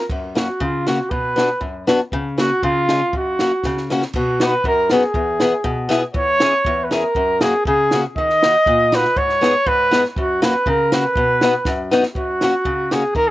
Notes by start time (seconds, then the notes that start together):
0.10 F#2, kick, crash
0.35 A#3 C#4 F#4, snare
0.60 C#3 F4, kick
0.87 A#3 C#4 F#4, snare
1.11 B2 B4, kick
1.36 B3 D4 F#4, snare
1.61 F#2, kick
1.87 B3 D4 F#4, snare
2.12 C#3, kick
2.38 A#3 C#4 F#4, snare
2.63 C#3 F4, kick
2.89 G#3 C#4 F4, snare
3.13 F#2 F#4, kick
3.39 A#3 C#4 F#4, snare
3.63 C#3, kick, snare
3.77 snare
3.90 A#3 C#4 F#4, snare
4.02 snare
4.13 B2 F#4, kick, crash
4.40 B3 D#4 F#4, snare
4.44 B4
4.64 F#2 A#4, kick
4.90 B3 D#4 F#4 G#4, snare
5.02 snare
5.14 E2, kick
5.40 B3 E4 G#4, snare
5.64 B2, kick
5.89 B3 E4 G#4, snare
6.14 E2 C#5, kick
6.40 C#4 E4 G#4, snare
6.65 E2, kick
6.84 B4
6.91 C#4 E4 G#4 A#4, snare
7.15 F#2, kick
7.41 A#3 C#4 F#4 G#4, snare
7.65 C#3 G#4, kick
7.91 A#3 C#4 F#4, snare
8.16 D#3 D#5, kick
8.30 snare
8.43 A#3 D#4 F#4, snare
8.66 A#2, kick
8.92 A#3 D#4 F#4 B4, snare
9.05 snare
9.16 G#2 C#5, kick
9.29 snare
9.41 B3 D#4 G#4, snare
9.66 G#2 B4, kick
9.91 B3 D#4 G#4, snare
10.05 snare
10.16 F#2 F#4, kick
10.42 A#3 C#4 F#4 B4, snare
10.66 C#3 A#4, kick
10.92 A#3 C#4 F#4 B4, snare
11.16 B2, kick
11.41 B3 D#4 F#4, snare
11.65 F#2, kick, snare
11.91 B3 D#4 F#4, snare
12.03 snare
12.15 F#2 F#4, kick
12.41 A#3 C#4 F#4, snare
12.65 C#3, kick
12.91 A#3 C#4 F#4 G#4, snare
13.15 D#3 A#4, kick